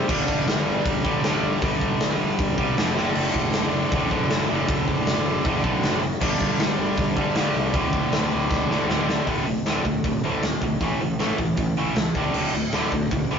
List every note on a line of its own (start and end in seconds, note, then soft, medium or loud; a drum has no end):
0.09 0.24 G1 loud
0.09 1.04 G2 loud
0.09 1.04 D3 loud
0.09 1.03 G3 loud
0.09 kick loud
0.09 crash loud
0.28 0.43 G1 medium
0.28 kick medium
0.47 0.62 G1 loud
0.47 snare loud
0.47 open hi-hat medium
0.67 0.81 G1 loud
0.85 1.00 G1 medium
0.85 kick loud
0.85 open hi-hat medium
1.04 1.20 G1 medium
1.04 1.23 G2 medium
1.04 1.23 D3 medium
1.04 1.23 G3 loud
1.04 kick loud
1.23 1.38 G1 loud
1.23 1.61 G2 medium
1.23 1.62 D3 medium
1.23 1.62 G3 loud
1.23 snare loud
1.23 open hi-hat medium
1.43 1.58 G1 medium
1.62 1.92 G1 loud
1.62 2.57 G2 medium
1.62 2.57 D3 loud
1.62 2.56 G3 loud
1.62 kick loud
1.62 open hi-hat medium
1.81 kick medium
2.00 2.15 G1 medium
2.00 snare loud
2.00 open hi-hat medium
2.19 2.34 G1 medium
2.39 2.54 G1 loud
2.39 kick loud
2.39 open hi-hat medium
2.58 2.73 C2 medium
2.58 2.75 G2 medium
2.58 2.76 D3 medium
2.58 2.76 G3 medium
2.58 kick medium
2.77 2.97 F1 medium
2.77 2.95 G2 medium
2.77 2.95 D3 medium
2.77 2.96 G3 medium
2.77 snare loud
2.77 open hi-hat medium
2.95 3.11 F#1 medium
2.95 3.90 D2 loud
2.95 3.91 A2 loud
2.95 3.91 D3 loud
2.95 snare medium
3.15 3.30 F#1 loud
3.15 crash loud
3.34 3.49 F#1 loud
3.34 kick medium
3.53 3.69 F#1 medium
3.53 snare loud
3.53 open hi-hat medium
3.73 3.87 F#1 medium
3.92 4.07 F#1 medium
3.92 4.10 D2 medium
3.92 4.10 A2 medium
3.92 4.09 D3 medium
3.92 kick loud
3.92 open hi-hat medium
4.10 4.26 F#1 medium
4.10 4.48 D2 medium
4.10 4.48 A2 medium
4.10 4.48 D3 medium
4.10 kick medium
4.30 4.45 F#1 medium
4.30 snare loud
4.30 open hi-hat medium
4.49 4.64 F#1 loud
4.49 5.44 D2 loud
4.49 5.44 A2 loud
4.49 5.45 D3 loud
4.68 4.98 F#1 loud
4.68 kick loud
4.68 open hi-hat medium
4.88 kick medium
5.06 5.21 F#1 medium
5.06 snare loud
5.06 open hi-hat medium
5.26 5.41 F#1 medium
5.45 5.60 F#1 medium
5.45 5.63 D2 medium
5.45 5.63 A2 medium
5.45 5.62 D3 loud
5.45 kick loud
5.45 open hi-hat medium
5.63 5.79 B1 medium
5.63 6.02 D2 medium
5.63 6.01 A2 medium
5.63 6.01 D3 medium
5.63 kick medium
5.83 6.12 F#1 loud
5.83 snare loud
5.83 open hi-hat medium
6.21 6.36 G1 loud
6.21 7.16 G2 loud
6.21 7.16 D3 loud
6.21 7.15 G3 loud
6.21 kick loud
6.21 crash loud
6.41 6.55 G1 medium
6.41 kick medium
6.59 6.74 G1 loud
6.59 snare loud
6.59 open hi-hat medium
6.79 6.94 G1 loud
6.97 7.12 G1 loud
6.97 kick loud
6.97 open hi-hat medium
7.17 7.32 G1 medium
7.17 7.35 G2 medium
7.17 7.35 D3 medium
7.17 7.35 G3 medium
7.17 kick medium
7.35 7.51 G1 medium
7.35 7.73 G2 medium
7.35 7.74 D3 medium
7.35 7.74 G3 medium
7.35 snare loud
7.35 open hi-hat medium
7.55 7.75 C2 medium
7.73 8.03 D1 loud
7.73 8.68 D2 loud
7.73 8.69 A2 loud
7.73 8.68 D3 loud
7.73 kick loud
7.73 open hi-hat medium
7.93 kick medium
8.12 8.27 D1 medium
8.12 snare loud
8.12 open hi-hat medium
8.33 8.47 D1 loud
8.51 8.65 D1 medium
8.51 kick loud
8.51 snare medium
8.69 8.84 G1 medium
8.69 8.87 D2 medium
8.69 8.88 A2 medium
8.69 8.87 D3 medium
8.69 snare medium
8.88 9.18 D1 medium
8.88 9.26 D2 medium
8.88 9.26 A2 medium
8.88 9.26 D3 medium
8.88 snare loud
9.09 snare loud
9.27 9.40 D1 medium
9.27 9.45 D2 medium
9.27 9.45 A2 medium
9.27 9.46 D3 medium
9.27 kick loud
9.27 open hi-hat medium
9.46 9.58 D1 medium
9.46 9.64 D2 medium
9.46 9.64 A2 medium
9.46 open hi-hat medium
9.66 9.78 D1 medium
9.66 9.84 D2 medium
9.66 9.84 A2 medium
9.66 9.84 D3 medium
9.66 snare loud
9.66 open hi-hat medium
9.85 9.97 D2 medium
9.85 10.02 D2 medium
9.85 10.03 A2 medium
9.85 kick medium
9.85 open hi-hat medium
10.04 10.16 D1 medium
10.04 10.22 D2 medium
10.04 10.22 A2 medium
10.04 kick loud
10.04 open hi-hat medium
10.24 10.36 D1 medium
10.24 10.42 D2 medium
10.24 10.42 A2 medium
10.24 10.42 D3 medium
10.24 open hi-hat medium
10.43 10.55 D1 medium
10.43 10.60 D2 medium
10.43 10.60 A2 medium
10.43 snare loud
10.43 open hi-hat medium
10.62 10.74 D1 medium
10.62 10.79 D2 medium
10.62 10.80 A2 medium
10.62 kick medium
10.62 open hi-hat medium
10.81 10.93 A1 loud
10.81 10.99 A2 medium
10.81 10.99 E3 medium
10.81 10.99 A3 medium
10.81 kick loud
10.81 open hi-hat medium
11.00 11.13 A1 medium
11.00 11.18 A2 medium
11.00 11.18 E3 medium
11.00 open hi-hat medium
11.19 11.32 A1 medium
11.19 11.37 A2 medium
11.19 11.38 E3 medium
11.19 11.38 A3 medium
11.19 snare loud
11.19 open hi-hat medium
11.38 11.51 A1 medium
11.38 11.56 A2 medium
11.38 11.56 E3 medium
11.38 kick medium
11.38 open hi-hat medium
11.57 11.70 A1 medium
11.57 11.75 A2 medium
11.57 11.75 E3 medium
11.57 kick loud
11.57 open hi-hat medium
11.77 11.89 A1 medium
11.77 11.95 A2 medium
11.77 11.96 E3 medium
11.77 11.96 A3 medium
11.77 open hi-hat medium
11.96 12.08 C#2 medium
11.96 12.14 A2 medium
11.96 12.14 E3 medium
11.96 snare loud
11.96 open hi-hat medium
12.15 12.28 D1 medium
12.15 12.34 D2 medium
12.15 12.34 A2 loud
12.15 12.34 D3 loud
12.15 kick loud
12.15 open hi-hat medium
12.34 12.46 D1 loud
12.34 12.53 D2 medium
12.34 12.53 A2 loud
12.34 12.53 D3 loud
12.34 crash loud
12.53 12.66 D1 medium
12.53 12.71 D2 medium
12.53 12.72 A2 medium
12.53 open hi-hat medium
12.72 12.85 D1 medium
12.72 12.91 D2 medium
12.72 12.91 A2 medium
12.72 12.92 D3 medium
12.72 snare loud
12.72 open hi-hat medium
12.91 13.04 D2 medium
12.91 13.10 D2 medium
12.91 13.10 A2 medium
12.91 kick medium
12.91 open hi-hat medium
13.11 13.24 D1 medium
13.11 13.29 D2 medium
13.11 13.29 A2 medium
13.11 kick loud
13.11 open hi-hat medium
13.31 13.39 D1 medium
13.31 13.39 D2 medium
13.31 13.39 A2 loud
13.31 13.39 D3 loud
13.31 open hi-hat medium